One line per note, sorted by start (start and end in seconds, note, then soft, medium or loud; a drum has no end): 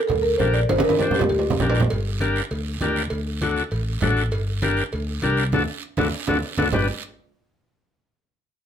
0.08 0.34 D2 medium
0.08 0.15 A4 medium
0.08 cowbell medium
0.08 high conga soft
0.08 low conga medium
0.08 long guiro medium
0.22 0.37 A#4 medium
0.38 0.64 A#1 loud
0.38 0.60 D4 medium
0.38 0.61 G4 medium
0.38 0.61 A#4 medium
0.38 0.45 C5 medium
0.38 high conga medium
0.38 low conga medium
0.38 short guiro medium
0.54 0.61 D5 loud
0.54 short guiro medium
0.69 0.82 G1 medium
0.69 0.76 C5 loud
0.69 cowbell medium
0.69 high conga medium
0.69 high timbale medium
0.69 long guiro medium
0.78 high conga loud
0.78 high timbale loud
0.84 1.12 A#4 medium
0.89 high conga medium
0.89 high timbale medium
0.99 1.21 D4 medium
0.99 1.22 G4 medium
0.99 1.22 C5 medium
0.99 high conga medium
0.99 low timbale loud
0.99 short guiro medium
1.11 low conga medium
1.11 short guiro medium
1.15 1.22 G4 medium
1.19 low conga medium
1.19 low timbale loud
1.29 1.54 D2 medium
1.29 1.72 G4 medium
1.29 cowbell medium
1.29 long guiro medium
1.39 low timbale medium
1.50 low conga medium
1.59 1.84 A#1 loud
1.59 1.82 D4 medium
1.59 1.82 G4 medium
1.59 1.82 A#4 medium
1.59 low conga medium
1.59 short guiro medium
1.70 low timbale loud
1.75 short guiro medium
1.80 low conga medium
1.80 low timbale medium
1.90 2.39 G1 loud
1.90 cowbell loud
1.90 high conga soft
1.90 long guiro medium
2.20 2.42 D4 medium
2.20 2.42 G4 medium
2.20 2.42 A#4 medium
2.20 cowbell medium
2.20 high conga medium
2.20 short guiro medium
2.36 short guiro medium
2.51 2.75 D2 medium
2.51 cowbell medium
2.51 high conga soft
2.51 long guiro medium
2.81 3.05 D2 medium
2.81 3.02 D4 medium
2.81 3.03 G4 medium
2.81 3.03 A#4 medium
2.81 cowbell medium
2.81 high conga medium
2.81 low timbale medium
2.81 short guiro medium
2.96 short guiro medium
3.10 3.60 D2 loud
3.10 cowbell medium
3.10 high conga soft
3.10 long guiro medium
3.42 3.63 D4 medium
3.42 3.63 F#4 medium
3.42 3.63 A4 medium
3.42 cowbell medium
3.42 high conga medium
3.42 short guiro medium
3.57 short guiro medium
3.71 3.96 A1 medium
3.71 cowbell medium
3.71 high conga soft
3.71 long guiro medium
4.01 4.32 A1 medium
4.01 4.23 D4 medium
4.01 4.23 F#4 medium
4.01 4.23 A4 medium
4.01 cowbell medium
4.01 high conga medium
4.01 low conga medium
4.01 short guiro medium
4.17 short guiro medium
4.31 4.81 G1 loud
4.31 cowbell loud
4.31 high conga soft
4.31 long guiro medium
4.62 4.83 D4 medium
4.62 4.83 G4 medium
4.62 4.84 A#4 medium
4.62 cowbell medium
4.62 high conga medium
4.62 short guiro medium
4.77 short guiro medium
4.92 5.17 D2 medium
4.92 cowbell medium
4.92 high conga soft
4.92 long guiro medium
5.22 5.53 C2 medium
5.22 5.44 D4 medium
5.22 5.44 G4 medium
5.22 5.44 A#4 loud
5.22 cowbell medium
5.22 high conga medium
5.22 short guiro medium
5.37 short guiro medium
5.52 5.65 D2 loud
5.52 5.63 D4 medium
5.52 5.63 F#4 loud
5.52 5.63 A4 loud
5.52 high conga loud
5.52 high timbale medium
5.52 long guiro loud
5.97 6.09 D2 loud
5.97 6.08 D4 medium
5.97 6.08 F#4 loud
5.97 6.08 A4 medium
5.97 high conga loud
5.97 high timbale loud
5.97 long guiro loud
6.27 6.40 D2 medium
6.27 6.38 D4 loud
6.27 6.38 F#4 loud
6.27 6.38 A4 medium
6.27 high conga loud
6.27 high timbale loud
6.27 long guiro loud
6.58 6.70 D2 loud
6.58 6.68 D4 medium
6.58 6.68 F#4 loud
6.58 6.68 A4 medium
6.58 high conga loud
6.58 high timbale medium
6.58 long guiro loud
6.72 6.88 G1 loud
6.72 6.88 D4 medium
6.72 6.87 G4 medium
6.72 6.88 B4 medium
6.72 low conga medium
6.72 low timbale medium
6.72 long guiro loud